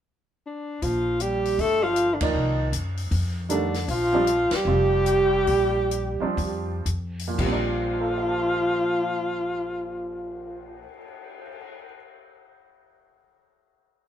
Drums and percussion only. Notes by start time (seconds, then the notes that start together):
0.82 kick, open hi-hat
1.20 closed hi-hat
1.45 open hi-hat
1.59 kick, open hi-hat
1.96 closed hi-hat
2.21 kick, ride
2.73 closed hi-hat
2.97 open hi-hat
3.11 kick, open hi-hat
3.50 closed hi-hat
3.74 snare, open hi-hat
3.88 kick, open hi-hat
4.27 closed hi-hat
4.51 snare, ride
5.06 closed hi-hat
5.47 kick, open hi-hat
5.91 closed hi-hat
6.37 kick, open hi-hat
6.86 closed hi-hat
7.19 open hi-hat
7.39 kick, crash
7.74 cymbal swell